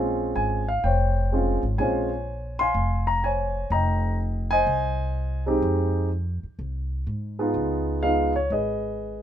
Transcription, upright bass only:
0.00 0.33 A#1 medium
0.35 0.80 G#1 medium
0.84 1.60 F1 medium
1.63 1.78 G#1 medium
1.79 2.71 A#1 medium
2.74 3.67 F1 medium
3.70 4.63 F1 medium
4.66 5.59 C2 medium
5.62 6.39 F2 medium
6.43 muted upright bass stroke soft
6.59 7.03 C2 medium
7.07 7.51 G#2 medium
7.54 8.46 C#2 medium
8.50 9.22 G#1 medium

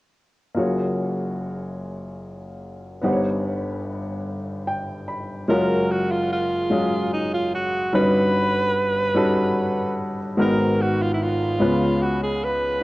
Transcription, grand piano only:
0.55 2.99 F#1 soft
0.55 2.99 F#2 soft
0.55 2.98 A#3 soft
0.55 2.98 F4 soft
0.55 2.99 F#4 soft
0.55 2.99 G#4 soft
0.59 3.00 C#5 soft
3.01 5.45 G1 soft
3.01 5.45 G2 soft
3.01 5.44 B3 soft
3.01 5.44 D#4 soft
3.01 5.45 G4 soft
3.01 5.45 F#5 soft
3.06 3.11 C5 soft
3.12 5.49 C#5 medium
4.67 5.05 G5 soft
5.08 5.46 B5 soft
5.48 7.90 F#1 soft
5.48 7.90 F#2 soft
5.48 6.51 G#3 medium
5.48 6.51 C#4 medium
5.48 6.52 F4 medium
5.48 6.52 F#4 medium
5.48 6.52 A#4 medium
6.70 7.74 F#3 soft
6.70 7.73 G#3 medium
6.70 7.74 C#4 soft
6.70 7.74 F4 medium
6.70 7.75 G#4 medium
7.93 10.34 G1 soft
7.93 10.34 G2 soft
7.93 8.96 G3 medium
7.93 8.96 C#4 medium
7.93 8.96 D#4 medium
7.93 8.96 F#4 medium
7.93 8.97 B4 medium
9.14 10.18 G3 medium
9.14 10.18 C#4 medium
9.14 10.18 D#4 medium
9.14 10.19 F#4 medium
9.14 10.19 A4 medium
10.37 11.56 G#1 soft
10.37 11.56 G#2 medium
10.37 11.40 G#3 medium
10.37 11.40 B3 medium
10.37 11.41 D#4 medium
10.37 11.41 F#4 medium
10.37 11.41 A#4 medium
11.59 12.78 C#2 medium
11.59 12.78 C#3 medium
11.59 12.62 G#3 medium
11.59 12.62 B3 medium
11.59 12.63 C#4 soft
11.59 12.63 F4 medium
11.59 12.63 B4 medium

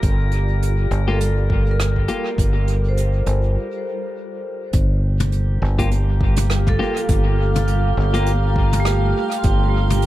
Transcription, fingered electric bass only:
0.03 0.89 G1 medium
0.91 2.06 G1 medium
2.38 3.24 G1 medium
3.26 3.56 G1 medium
4.74 5.59 G1 medium
5.62 6.77 G1 medium
7.09 7.95 G1 medium
7.97 9.12 G1 medium
9.44 10.06 G1 medium

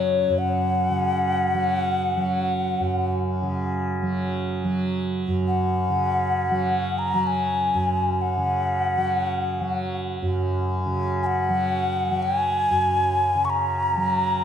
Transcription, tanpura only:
0.00 0.29 F#2 soft
0.00 0.89 C#3 soft
0.00 1.54 F#3 soft
0.29 2.80 F#2 soft
0.90 3.42 C#3 soft
1.54 2.17 F#3 medium
2.17 4.02 F#3 soft
2.80 5.28 F#2 soft
3.42 5.89 C#3 soft
4.02 4.64 F#3 soft
4.64 6.51 F#3 soft
5.28 7.74 F#2 soft
5.90 8.37 C#3 medium
6.51 7.14 F#3 soft
7.14 8.97 F#3 soft
7.74 10.22 F#2 soft
8.37 10.85 C#3 soft
8.97 9.61 F#3 soft
9.61 11.49 F#3 soft
10.22 12.70 F#2 soft
10.86 13.35 C#3 medium
11.49 12.10 F#3 soft
12.10 13.97 F#3 soft
12.71 14.44 F#2 soft
13.35 14.44 C#3 soft
13.97 14.44 F#3 soft

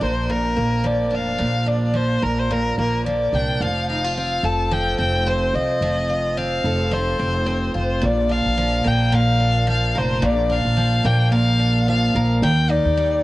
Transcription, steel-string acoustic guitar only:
0.00 0.28 A#2 medium
0.00 0.83 F3 medium
0.00 0.56 A#3 medium
0.00 1.09 D4 soft
0.00 2.21 A#4 medium
0.29 1.37 A#2 medium
0.56 2.78 A#3 medium
0.84 1.93 F3 medium
1.11 1.65 D4 medium
1.38 2.49 A#2 medium
1.66 3.32 D4 medium
1.94 3.06 F3 medium
2.22 3.67 A#4 medium
2.51 3.67 A#2 medium
2.79 3.67 A#3 medium
3.06 3.62 F3 medium
3.34 3.67 D4 medium
3.62 4.71 F3 medium
3.90 4.04 D#4 medium
4.04 5.54 F4 soft
4.18 4.97 C4 medium
4.44 6.64 A4 medium
4.71 5.82 F3 medium
4.98 5.25 C4 medium
5.27 6.36 C4 medium
5.55 6.09 F4 medium
5.82 6.91 F3 medium
6.10 7.74 F4 medium
6.37 7.18 C4 medium
6.65 8.09 A4 medium
6.91 8.57 F3 medium
7.19 7.45 C4 medium
7.46 8.08 C4 medium
7.74 8.29 F4 medium
8.02 9.11 A#2 medium
8.29 9.39 D4 medium
8.57 9.66 F3 medium
8.84 11.04 A#3 medium
9.12 10.21 A#2 medium
9.40 10.48 D4 medium
9.67 10.76 F3 medium
9.95 12.15 A#4 medium
10.22 11.31 A#2 medium
10.50 11.58 D4 medium
10.77 11.87 F3 medium
11.05 13.23 A#3 medium
11.32 12.49 A#2 medium
11.59 12.49 D4 medium
11.88 12.49 F3 medium
12.16 13.23 A#4 medium
12.43 13.23 D#3 medium
12.69 13.23 D#4 medium
12.98 13.23 G3 medium

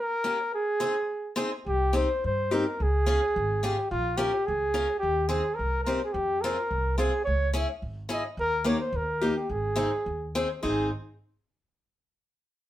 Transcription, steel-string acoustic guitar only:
0.24 0.37 A#3 medium
0.24 0.37 C#4 medium
0.24 0.37 G4 medium
0.80 0.93 C4 medium
0.80 0.93 D#4 medium
0.80 0.94 G#4 medium
1.36 1.50 C4 medium
1.36 1.50 D#4 medium
1.36 1.50 G#4 medium
1.93 2.07 C4 medium
1.93 2.07 D#4 medium
1.93 2.07 G4 medium
2.51 2.64 C4 medium
2.51 2.64 D#4 soft
2.51 2.64 G4 medium
3.06 3.20 C#4 medium
3.06 3.20 F4 medium
3.06 3.20 G#4 medium
3.63 3.76 C#4 medium
3.63 3.76 F4 medium
3.63 3.76 G#4 medium
4.17 4.31 C#4 medium
4.17 4.31 F4 medium
4.17 4.31 A#4 medium
4.74 4.87 C#4 medium
4.74 4.86 F4 soft
4.74 4.87 A#4 medium
5.29 5.42 C4 medium
5.29 5.42 D#4 medium
5.29 5.42 G#4 medium
5.86 5.99 C4 medium
5.86 5.99 D#4 medium
5.86 5.99 G4 medium
6.44 6.56 C4 medium
6.44 6.56 F4 medium
6.44 6.56 G#4 medium
6.98 7.11 C4 medium
6.98 7.11 F4 medium
6.98 7.11 G#4 medium
7.54 7.66 C#4 medium
7.54 7.67 E4 medium
7.54 7.67 G#4 medium
8.09 8.22 C#4 medium
8.09 8.22 E4 medium
8.09 8.22 G#4 medium
8.64 8.78 A#3 medium
8.64 8.78 D#4 medium
8.64 8.78 G4 medium
9.21 9.34 A#3 medium
9.21 9.34 D#4 medium
9.21 9.34 G4 medium
9.76 9.89 C4 medium
9.76 9.89 D#4 medium
9.76 9.89 G#4 medium
10.35 10.47 C4 medium
10.35 10.47 D#4 medium
10.35 10.47 G#4 medium
10.63 10.89 C4 medium
10.63 10.89 D#4 medium
10.63 10.89 G#4 medium

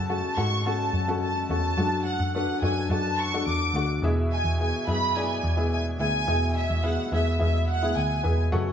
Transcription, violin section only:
0.10 0.36 A5 medium
0.39 0.66 C#6 loud
0.66 1.18 A5 medium
1.22 1.48 A5 medium
1.50 2.02 A5 loud
2.05 2.33 F#5 medium
2.35 2.60 F#5 medium
2.62 2.88 G#5 medium
2.91 3.17 A5 medium
3.18 3.46 C#6 loud
3.47 3.86 D6 medium
4.32 4.58 G#5 loud
4.60 4.85 G#5 loud
4.89 5.16 B5 loud
5.16 5.72 G#5 medium
5.73 5.85 G#5 loud
6.00 6.52 G#5 loud
6.57 6.84 E5 medium
6.85 7.13 F#5 medium
7.14 7.39 E5 medium
7.42 7.67 E5 medium
7.69 7.95 F#5 medium
7.97 8.39 G#5 medium

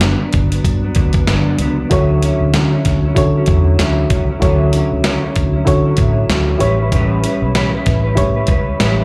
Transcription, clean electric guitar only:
0.00 0.19 G2 medium
0.00 0.20 D3 medium
0.00 0.20 F#3 medium
0.00 0.19 B3 medium
0.00 0.17 D4 medium
0.18 0.52 F#3 soft
0.18 0.51 B3 soft
0.18 0.49 D4 medium
0.50 0.84 F#3 soft
0.50 0.83 B3 soft
0.50 0.81 D4 medium
0.82 0.95 F#3 soft
0.82 0.96 B3 soft
0.82 0.95 D4 medium
0.95 1.26 D3 medium
0.95 1.26 F#3 medium
0.95 1.27 B3 medium
0.95 1.27 D4 medium
1.26 1.58 G2 medium
1.26 1.58 D3 medium
1.26 1.59 F#3 medium
1.26 1.59 B3 medium
1.26 1.59 D4 medium
1.59 1.78 D3 medium
1.59 1.79 F#3 medium
1.59 1.78 B3 medium
1.59 1.76 D4 medium
1.78 1.90 F#3 soft
1.78 1.91 B3 medium
1.78 1.90 D4 medium
1.91 2.21 D3 medium
1.91 2.22 F#3 medium
1.91 2.22 C#4 medium
1.91 2.23 E4 medium
2.23 2.53 D3 medium
2.23 2.54 F#3 medium
2.23 2.54 C#4 medium
2.23 2.55 E4 medium
2.54 2.72 D3 medium
2.54 2.73 F#3 medium
2.54 2.73 C#4 medium
2.54 2.71 E4 medium
2.72 3.05 F#3 soft
2.72 3.04 C#4 medium
2.72 3.03 E4 medium
3.05 3.37 F#3 soft
3.05 3.36 C#4 medium
3.05 3.35 E4 medium
3.36 3.47 F#3 soft
3.36 3.48 C#4 medium
3.36 3.48 E4 medium
3.48 3.79 D3 medium
3.48 3.79 F#3 medium
3.48 3.80 C#4 medium
3.48 3.80 E4 medium
3.80 4.10 D3 medium
3.80 4.11 F#3 medium
3.80 4.11 C#4 medium
3.80 4.11 E4 medium
4.11 4.29 D3 medium
4.11 4.30 F#3 medium
4.11 4.30 C#4 medium
4.11 4.28 E4 medium
4.30 4.42 F#3 soft
4.30 4.43 C#4 medium
4.30 4.42 E4 medium
4.42 4.72 D3 medium
4.42 4.73 F#3 medium
4.42 4.74 C#4 medium
4.42 4.74 E4 medium
4.73 5.03 D3 medium
4.73 5.04 F#3 medium
4.73 5.04 C#4 medium
4.73 5.04 E4 medium
5.04 5.23 D3 medium
5.04 5.23 F#3 medium
5.04 5.23 C#4 medium
5.04 5.22 E4 medium
5.23 5.55 F#3 soft
5.23 5.54 C#4 medium
5.23 5.52 E4 medium
5.53 5.86 F#3 soft
5.53 5.85 C#4 soft
5.53 5.84 E4 medium
5.85 5.98 F#3 soft
5.85 5.98 C#4 soft
5.85 5.98 E4 medium
5.97 6.28 D3 medium
5.97 6.29 F#3 medium
5.97 6.30 C#4 medium
5.97 6.31 E4 medium
6.29 6.61 D3 medium
6.29 6.59 F#3 medium
6.29 6.60 C#4 medium
6.29 6.61 E4 medium
6.60 6.79 G3 medium
6.60 6.80 C#4 medium
6.60 6.79 E4 medium
6.60 6.78 B4 medium
6.79 6.91 G3 soft
6.79 6.92 C#4 medium
6.79 6.92 E4 medium
6.79 6.92 B4 medium
6.91 7.23 A2 medium
6.91 7.23 E3 medium
6.91 7.21 G3 medium
6.91 7.22 C#4 medium
6.91 7.24 E4 medium
6.91 7.24 B4 medium
7.22 7.54 G3 medium
7.22 7.54 C#4 medium
7.22 7.54 E4 medium
7.22 7.55 B4 medium
7.53 7.73 A2 medium
7.53 7.73 E3 medium
7.53 7.73 G3 medium
7.53 7.74 C#4 medium
7.53 7.73 E4 medium
7.53 7.73 B4 medium
7.74 8.06 G3 soft
7.74 8.05 C#4 medium
7.74 8.04 E4 medium
7.74 8.03 B4 medium
8.04 8.37 G3 soft
8.04 8.37 C#4 medium
8.04 8.36 E4 soft
8.04 8.34 B4 medium
8.36 8.47 G3 soft
8.36 8.48 C#4 medium
8.36 8.49 E4 medium
8.36 8.48 B4 medium
8.48 8.79 G3 medium
8.48 8.80 C#4 medium
8.48 8.80 E4 medium
8.48 8.80 B4 medium
8.79 9.04 A2 medium
8.79 9.04 E3 medium
8.79 9.04 G3 medium
8.79 9.04 C#4 medium
8.79 9.04 E4 medium
8.79 9.04 B4 loud

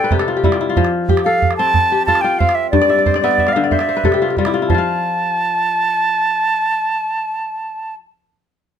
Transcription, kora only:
0.00 0.19 A4 medium
0.00 1.27 B4 medium
0.00 0.90 D5 medium
0.00 0.25 E5 medium
0.00 0.13 F5 medium
0.12 0.81 C3 medium
0.12 0.36 G4 medium
0.20 1.26 A4 medium
0.28 0.50 F4 medium
0.37 1.09 G4 medium
0.44 0.81 G3 medium
0.44 0.60 E4 medium
0.52 0.69 F4 medium
0.61 0.83 E4 medium
0.69 2.08 F4 medium
0.77 2.77 F3 medium
1.09 1.91 G4 medium
1.26 2.08 A4 medium
1.59 2.40 C4 medium
1.92 3.33 G4 medium
2.08 2.24 F4 medium
2.08 3.40 A4 medium
2.24 2.96 F4 medium
2.40 3.30 C4 medium
2.73 3.76 G2 medium
2.81 2.98 D5 medium
2.90 3.23 E5 medium
2.99 3.15 D5 medium
3.06 3.30 C5 medium
3.15 3.30 D5 medium
3.24 3.78 B3 medium
3.24 3.39 E5 medium
3.31 3.63 D5 medium
3.39 3.56 E5 medium
3.48 4.52 F5 medium
3.56 3.76 D3 medium
3.56 4.28 E5 medium
3.64 3.80 D5 medium
3.72 3.88 C5 medium
3.80 4.91 D5 medium
3.89 5.07 C5 medium
3.97 5.20 B4 medium
4.05 4.74 C3 medium
4.05 5.37 A4 medium
4.14 4.30 G4 medium
4.22 4.38 F4 medium
4.30 5.71 G4 medium
4.38 4.74 G3 medium
4.38 4.53 F4 medium
4.46 4.62 E4 medium
4.54 4.74 F4 medium
4.62 4.80 E4 medium
4.70 8.00 F3 medium
4.74 8.05 F4 medium
4.74 8.09 F5 medium

